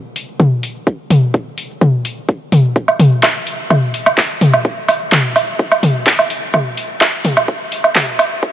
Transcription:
0.16 open hi-hat, shaker
0.28 shaker
0.40 kick, mid tom, shaker
0.63 open hi-hat, shaker
0.75 shaker
0.87 kick, shaker
1.10 open hi-hat, mid tom, shaker
1.23 shaker
1.34 kick, shaker
1.58 open hi-hat, shaker
1.70 shaker
1.81 kick, mid tom, shaker
2.05 open hi-hat, shaker
2.17 shaker
2.29 kick, shaker
2.52 open hi-hat, mid tom, shaker
2.65 shaker
2.76 kick, shaker
2.88 low woodblock
3.00 open hi-hat, mid tom, shaker
3.12 shaker
3.23 kick, clap, low woodblock, shaker
3.47 open hi-hat, shaker
3.59 shaker
3.70 kick, mid tom, low woodblock, shaker
3.94 open hi-hat, shaker
4.06 low woodblock, shaker
4.18 kick, clap, shaker
4.41 open hi-hat, mid tom, shaker
4.54 low woodblock, shaker
4.65 kick, shaker
4.89 open hi-hat, low woodblock, shaker
5.01 shaker
5.12 kick, clap, mid tom, shaker
5.36 open hi-hat, low woodblock, shaker
5.48 shaker
5.59 kick, shaker
5.72 low woodblock
5.83 open hi-hat, mid tom, shaker
5.95 shaker
6.07 kick, clap, shaker
6.19 low woodblock
6.30 open hi-hat, shaker
6.42 shaker
6.54 kick, mid tom, low woodblock, shaker
6.77 open hi-hat, shaker
6.90 shaker
7.01 kick, clap, low woodblock, shaker
7.25 open hi-hat, mid tom, shaker
7.37 low woodblock, shaker
7.48 kick, shaker
7.72 open hi-hat, shaker
7.84 low woodblock, shaker
7.95 kick, clap, mid tom, shaker
8.19 open hi-hat, low woodblock, shaker
8.31 shaker
8.43 kick, shaker

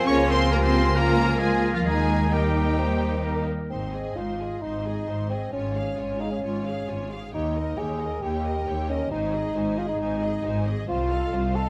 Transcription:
Already playing: F3 G#5
0.07 C#2 A#3 C#4 F4 G#4 A#4 C#5 C#6
0.30 C4 C5 C6
0.51 A#3 F4 G4 A#4 A#5
0.63 C4 C5 C6
0.95 A#3 F4 A#4 A#5
1.39 G#3 A#3 F4 G#4 G#5
1.74 F3 F4 F5
1.85 D#2 D#3 G#3 A#3 D#4 G#4 G#5 A#5
2.33 G3 A#3 D#4 G4 A#4 G5
2.79 C5
3.24 A#4
3.36 A#4
3.70 G#1 G#2 C4 D#4 C5 C6
3.94 G#4 D#5 G#5
4.16 G#1 G#2 D#4 F4 C5 C6
4.40 G#4 D#5 G#5
4.62 G#1 G#2 D#4 C5 C6
4.85 G#4 D#5 G#5
5.08 G#1 G#2 D#4 C5 C6
5.30 C4 G#4 D#5 G#5
5.52 G#1 G#2 C#4 F4 C#5 G#5
5.75 G#4 F5
5.97 G#1 G#2 F4 C#5 G#5
6.21 D#4 G#4 F5
6.32 C#4
6.43 G#1 G#2 F4 C#5 G#5
6.65 G#4 F5
6.88 G#1 G#2 F4 C#5 G#5
7.11 G#4 F5
7.33 D#2 D#4 G4 C#5 G5
7.55 A#4 D#5
7.78 D#2 G4 G#4 C#5 G5
8.00 A#4 D#5
8.22 D#2 G4 C#5 G5
8.45 A#4 D#5
8.67 D#2 G4 C#5 G5
8.89 C#4 A#4 D#5
9.11 G#1 G#2 D#4 C5 G#5
9.33 G#4 D#5
9.55 G#1 G#2 D#4 C5 G#5
9.78 F4 G#4 D#5
9.89 D#4
10.00 G#1 G#2 D#4 C5 G#5
10.23 G#4 D#5
10.44 G#1 G#2 D#4 C5 G#5
10.66 G#4 D#5
10.88 C2 F4 C5 F5
11.11 A4 D#5 F5
11.33 C2 F4 C5 F5
11.56 A4 D#5 F5

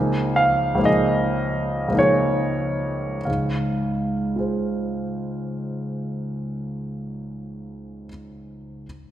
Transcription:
Already playing: C#2 F3 A#3 D#4 G#4
0.36 F5
0.75 C#2 F3
0.79 A#3 D#4
0.85 G#4 D#5
1.88 C#2 F3
1.93 A#3 D#4
1.97 G#4 C#5
3.25 C#2 G#2 F5
4.36 F4 G#4 C5

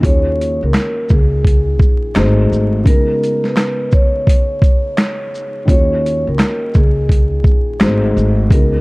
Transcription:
0.00 D#2 D#3 A#3 C#4 F4 F#4, kick
0.05 G#4 C#5, closed hi-hat
0.41 closed hi-hat, shaker
0.62 C#2 A#4
0.74 snare, clap, closed hi-hat
1.09 C#2 G#4, kick, shaker
1.45 kick, closed hi-hat
1.80 A#1, kick, shaker
2.15 G#1 G#3 A3 D#4 F#4 C5, snare, clap, closed hi-hat
2.52 G#1, shaker
2.84 C#3 G#3 B3 D#4 A#4, kick, closed hi-hat
2.88 F#4 G#4
3.24 closed hi-hat, shaker
3.44 B4, snare
3.57 snare, clap, closed hi-hat
3.91 C#5, kick, shaker
4.27 kick, closed hi-hat
4.62 kick, closed hi-hat, shaker
4.98 snare, clap, closed hi-hat
5.35 shaker
5.65 D#2 D#3 A#3 C#4 F4, kick, closed hi-hat
5.69 F#4 G#4 C#5
6.06 closed hi-hat, shaker
6.27 C#2 A#4
6.39 snare, clap, closed hi-hat
6.74 C#2 G#4, kick, shaker
7.09 kick, closed hi-hat
7.44 A#1, kick, shaker
7.80 G#1 G#3 A3 D#4 F#4 C5, snare, clap, closed hi-hat
8.17 G#1, shaker
8.49 C#2 C#3 G#3 B3 D#4 A#4, kick, closed hi-hat
8.53 F#4 G#4

